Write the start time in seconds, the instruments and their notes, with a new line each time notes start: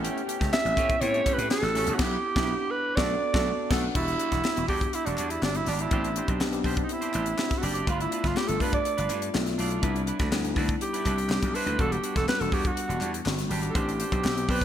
Already playing: tine electric piano B3 C#4 E4 G4 G5
0.03 clean electric guitar A3 C#4 G4, closed hi-hat
0.18 closed hi-hat
0.27 clean electric guitar A3 C#4 G4, closed hi-hat
0.39 slap bass C#2, clean electric guitar A3 C#4 G4, kick, snare, closed hi-hat
0.52 tine electric piano B3 C4 E4 G4, alto saxophone E5, muted clean electric guitar stroke, snare, clap
0.58 tine electric piano C#4
0.64 slap bass A1, muted clean electric guitar stroke, closed hi-hat
0.77 slap bass A2, clean electric guitar A3 C#4 G4, kick, closed hi-hat
0.89 muted clean electric guitar stroke, kick, closed hi-hat
1.01 slap bass A2, tine electric piano B3 C4 E4 G4, alto saxophone C#5, muted clean electric guitar stroke, closed hi-hat
1.08 tine electric piano C#4
1.14 clean electric guitar A3 C#4 G4, closed hi-hat
1.26 clean electric guitar A3 C#4 G4, kick, clap, closed hi-hat
1.33 alto saxophone B4
1.38 slap bass A2, muted clean electric guitar stroke, closed hi-hat
1.50 tine electric piano B3 C#4 E4 F#4, alto saxophone A4, muted clean electric guitar stroke, snare, clap
1.58 tine electric piano G4
1.62 slap bass A1, muted clean electric guitar stroke, snare, closed hi-hat
1.75 slap bass A1, clean electric guitar A3 C#4 A4, snare, open hi-hat
1.87 slap bass A#1, clean electric guitar A3 C#4 A4, closed hi-hat
1.94 alto saxophone F#4 G4
1.98 slap bass B1, tine electric piano B3 D4 E4, clean electric guitar B3 E4 G4, kick, snare, crash
2.36 slap bass B1, tine electric piano B3 D4 E4, clean electric guitar B3 E4 G4, kick, snare
2.71 alto saxophone B4
2.95 slap bass B1, clean electric guitar A3 D4 F#4, tine electric piano B3 F#4 A4, alto saxophone D5, kick, snare
3.03 tine electric piano D4
3.33 slap bass B1, clean electric guitar A3 D4 F#4, tine electric piano B3 D4 F#4 A4, kick, snare
3.70 slap bass B1, clean electric guitar A3 D4 A4, tine electric piano B3 D4 F#4 A4, kick, snare, crash
3.95 slap bass E1, clean electric guitar G3 D4 F#4, tine electric piano B3 D4 F#4 G4, alto saxophone E4, kick, crash
4.08 closed hi-hat
4.18 clean electric guitar G3 D4 F#4, closed hi-hat
4.31 slap bass E1, clean electric guitar G3 D4 F#4, kick, snare, closed hi-hat
4.43 tine electric piano B3 D4 F#4 G4, muted clean electric guitar stroke, snare, clap
4.55 slap bass E1, tine electric piano B3 D4 F#4 G4, muted clean electric guitar stroke, closed hi-hat
4.68 slap bass E2, clean electric guitar G3 D4 F#4, alto saxophone G4, kick, open hi-hat
4.81 muted clean electric guitar stroke, kick, closed hi-hat
4.92 alto saxophone E4, muted clean electric guitar stroke, closed hi-hat
5.05 slap bass E1, clean electric guitar G3 D4 F#4, alto saxophone D4, closed hi-hat
5.17 slap bass E2, clean electric guitar G3 D4 F#4, clap, closed hi-hat
5.30 alto saxophone E4, muted clean electric guitar stroke, closed hi-hat
5.42 slap bass G1, tine electric piano B3 D4 F#4 G4, alto saxophone D4, muted clean electric guitar stroke, snare, clap
5.54 alto saxophone E4, muted clean electric guitar stroke, closed hi-hat
5.66 slap bass G#1, clean electric guitar G3 D4 G4, alto saxophone D4, snare, open hi-hat
5.79 clean electric guitar G3 D4 G4, alto saxophone E4, closed hi-hat
5.91 slap bass A1, tine electric piano B3 C4 D4 F#4, clean electric guitar D4 G4 C5, kick, closed hi-hat
5.98 tine electric piano G4
6.04 closed hi-hat
6.16 clean electric guitar D4 G4 C5, closed hi-hat
6.28 slap bass B1, clean electric guitar D4 G4 C5, kick, closed hi-hat
6.39 slap bass B1, tine electric piano B3 C4 D4 G4, muted clean electric guitar stroke, snare, clap
6.52 tine electric piano B3 C4 D4 G4, muted clean electric guitar stroke, closed hi-hat
6.64 slap bass B1, clean electric guitar D4 G4 C5, kick, open hi-hat
6.77 muted clean electric guitar stroke, kick, closed hi-hat
6.83 alto saxophone D#4
6.89 alto saxophone E4, muted clean electric guitar stroke, closed hi-hat
7.01 clean electric guitar D4 G4 C5, closed hi-hat
7.13 slap bass A1, clean electric guitar D4 G4 C5, clap, closed hi-hat
7.26 muted clean electric guitar stroke, closed hi-hat
7.37 tine electric piano B3 C4 D4 F#4, muted clean electric guitar stroke, snare, clap
7.45 tine electric piano G4
7.50 muted clean electric guitar stroke, kick, snare, closed hi-hat
7.58 clean electric guitar D4, alto saxophone F#4
7.63 slap bass F#1, clean electric guitar G4 D5, alto saxophone G4, open hi-hat
7.74 clean electric guitar D4 G4 D5, closed hi-hat
7.87 slap bass G1, tine electric piano A3 B3 D4 F4, clean electric guitar D4 F4 B4, alto saxophone F4, kick, closed hi-hat
8.00 alto saxophone E4, closed hi-hat
8.11 clean electric guitar D4 F4 B4, closed hi-hat
8.24 slap bass G1, clean electric guitar D4 F4 B4, alto saxophone F4, kick, snare, closed hi-hat
8.34 tine electric piano A3 B3 D4 F4, alto saxophone G4, snare, clap
8.47 slap bass G1, tine electric piano A3 B3 D4 F4, alto saxophone A4, muted clean electric guitar stroke, closed hi-hat
8.60 slap bass G2, clean electric guitar D4 F4 B4, alto saxophone B4, kick, open hi-hat
8.73 alto saxophone D5, muted clean electric guitar stroke, kick, closed hi-hat
8.85 muted clean electric guitar stroke, closed hi-hat
8.97 slap bass G1, clean electric guitar D4 F4 B4, closed hi-hat
9.09 slap bass G2, clean electric guitar D4 F4 B4, clap, closed hi-hat
9.22 muted clean electric guitar stroke, closed hi-hat
9.33 slap bass B1, tine electric piano A3 B3 D4 F4, muted clean electric guitar stroke, snare, clap
9.46 muted clean electric guitar stroke, snare, closed hi-hat
9.58 slap bass B1, clean electric guitar D4 F4 D5, open hi-hat
9.71 clean electric guitar D4 F4 D5, closed hi-hat
9.82 slap bass C2, tine electric piano G3 B3 D4 E4, clean electric guitar D4 E4 B4, kick, closed hi-hat
9.96 closed hi-hat
10.07 clean electric guitar D4 E4 B4, closed hi-hat
10.19 slap bass D2, clean electric guitar D4 E4 B4, kick, snare, closed hi-hat
10.31 slap bass D2, tine electric piano G3 B3 D4 E4, snare, clap
10.44 tine electric piano G3 B3 D4 D#4, muted clean electric guitar stroke, closed hi-hat
10.51 tine electric piano E4
10.56 slap bass D2, clean electric guitar D4 E4 B4, kick, open hi-hat
10.69 muted clean electric guitar stroke, kick, closed hi-hat
10.81 alto saxophone G4, muted clean electric guitar stroke, closed hi-hat
10.93 clean electric guitar D4 E4 B4, closed hi-hat
11.06 slap bass C2, clean electric guitar D4 E4 B4, kick, clap, closed hi-hat
11.18 muted clean electric guitar stroke, closed hi-hat
11.29 slap bass C2, tine electric piano G3 B3 D4 E4, muted clean electric guitar stroke, snare, clap
11.42 slap bass B1, muted clean electric guitar stroke, kick, closed hi-hat
11.54 clean electric guitar D4 E4 C5, alto saxophone B4, open hi-hat
11.66 slap bass D2, clean electric guitar D4 E4 C5, closed hi-hat
11.78 slap bass E1, tine electric piano F#3 B3 D4 F#4, clean electric guitar G3 D4 F#4, alto saxophone A4, kick, closed hi-hat
11.84 tine electric piano G3
11.92 alto saxophone G4, closed hi-hat
12.03 clean electric guitar G3 D4 F#4, closed hi-hat
12.16 slap bass E1, clean electric guitar G3 D4 F#4, alto saxophone A4, kick, snare, closed hi-hat
12.28 tine electric piano G3 B3 D4 F#4, alto saxophone B4, muted clean electric guitar stroke, snare, clap
12.39 slap bass E1, tine electric piano G3 B3 D4 F#4, alto saxophone A4, muted clean electric guitar stroke, closed hi-hat
12.52 slap bass E2, clean electric guitar G3 D4 F#4, alto saxophone G4, kick, open hi-hat
12.64 alto saxophone F#4, muted clean electric guitar stroke, kick, closed hi-hat
12.75 muted clean electric guitar stroke, closed hi-hat
12.88 slap bass E1, clean electric guitar G3 D4 F#4, closed hi-hat
13.00 slap bass E2, clean electric guitar G3 D4 F#4, clap, closed hi-hat
13.13 muted clean electric guitar stroke, closed hi-hat
13.25 slap bass G1, tine electric piano G3 B3 D4 F#4, muted clean electric guitar stroke, snare, clap
13.38 muted clean electric guitar stroke, snare, closed hi-hat
13.49 slap bass G#1, clean electric guitar G3 D4 G4, open hi-hat
13.62 clean electric guitar G3 D4 G4, closed hi-hat
13.70 clean electric guitar D4, alto saxophone A4
13.75 slap bass A1, tine electric piano B3 C4 D4 G4, clean electric guitar G4 C5, alto saxophone G4, kick, closed hi-hat
13.89 closed hi-hat
13.99 clean electric guitar D4 G4 C5, closed hi-hat
14.12 slap bass B1, clean electric guitar D4 G4 C5, kick, closed hi-hat
14.24 slap bass B1, tine electric piano B3 C4 D4 G4, muted clean electric guitar stroke, snare, clap
14.36 tine electric piano B3 C4 D4 G4, muted clean electric guitar stroke, closed hi-hat
14.48 slap bass B1, clean electric guitar D4 G4 C5, alto saxophone B4, kick, open hi-hat
14.61 muted clean electric guitar stroke, kick